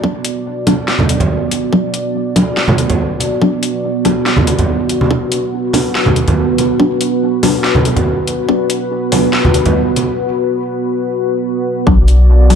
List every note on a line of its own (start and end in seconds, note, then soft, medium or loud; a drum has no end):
0.00 0.13 F#3 medium
0.00 11.83 B3 medium
0.00 0.13 B3 medium
0.00 0.13 D4 medium
0.00 11.83 F#4 medium
0.00 5.09 D5 medium
0.00 kick loud
0.25 closed hi-hat medium
0.67 0.82 F#3 medium
0.67 0.82 B3 medium
0.67 0.82 D4 loud
0.67 kick loud
0.67 closed hi-hat medium
0.67 muted conga medium
0.88 snare loud
0.99 high conga medium
0.99 low conga medium
1.09 closed hi-hat medium
1.20 closed hi-hat soft
1.20 low conga medium
1.51 closed hi-hat medium
1.73 1.82 F#3 medium
1.73 1.82 B3 medium
1.73 1.82 D4 medium
1.73 kick loud
1.94 closed hi-hat medium
2.36 2.51 F#3 medium
2.36 2.51 B3 medium
2.36 2.51 D4 loud
2.36 kick loud
2.36 closed hi-hat medium
2.36 muted conga medium
2.57 snare loud
2.68 high conga loud
2.68 low conga medium
2.78 closed hi-hat medium
2.90 closed hi-hat soft
2.90 low conga medium
3.20 closed hi-hat medium
3.20 muted conga soft
3.42 3.51 F#3 medium
3.42 3.51 B3 medium
3.42 3.51 D4 medium
3.42 kick loud
3.63 closed hi-hat medium
4.05 4.20 F#3 loud
4.05 4.20 B3 medium
4.05 4.20 D4 loud
4.05 kick loud
4.05 closed hi-hat medium
4.05 muted conga medium
4.26 snare loud
4.37 high conga medium
4.37 low conga medium
4.47 closed hi-hat medium
4.47 muted conga medium
4.59 closed hi-hat soft
4.59 low conga medium
4.89 closed hi-hat medium
5.01 high conga medium
5.11 5.20 F#3 medium
5.11 5.20 B3 medium
5.11 5.20 D4 medium
5.11 11.85 B4 medium
5.11 kick loud
5.32 closed hi-hat medium
5.73 5.89 F#3 medium
5.73 5.89 B3 medium
5.73 5.89 D4 loud
5.73 kick loud
5.73 open hi-hat medium
5.73 muted conga medium
5.95 snare loud
6.06 high conga medium
6.06 low conga medium
6.16 closed hi-hat medium
6.28 closed hi-hat soft
6.28 low conga medium
6.58 closed hi-hat medium
6.58 muted conga soft
6.80 6.89 F#3 medium
6.80 6.89 B3 medium
6.80 6.89 D4 medium
6.80 kick loud
7.01 closed hi-hat medium
7.43 7.58 F#3 loud
7.43 7.58 B3 medium
7.43 7.58 D4 loud
7.43 kick loud
7.43 open hi-hat medium
7.43 muted conga medium
7.64 snare loud
7.75 high conga loud
7.75 low conga medium
7.85 closed hi-hat medium
7.96 closed hi-hat soft
7.96 low conga medium
8.28 closed hi-hat medium
8.49 8.58 F#3 medium
8.49 8.58 B3 medium
8.49 8.58 D4 medium
8.49 kick loud
8.70 closed hi-hat medium
9.12 9.27 F#3 medium
9.12 9.27 B3 medium
9.12 9.27 D4 loud
9.12 kick loud
9.12 open hi-hat loud
9.12 muted conga medium
9.33 snare loud
9.45 high conga medium
9.45 low conga medium
9.54 closed hi-hat medium
9.66 closed hi-hat soft
9.66 low conga medium
9.96 closed hi-hat medium
9.96 muted conga medium
11.87 12.55 B1 loud
11.87 11.96 F#3 medium
11.87 12.55 B3 medium
11.87 11.96 B3 medium
11.87 11.96 D4 medium
11.87 12.55 F#4 medium
11.87 12.55 D5 medium
11.87 kick loud
12.08 closed hi-hat medium
12.50 12.55 F#3 medium
12.50 12.55 B3 medium
12.50 12.55 D4 loud
12.50 open hi-hat medium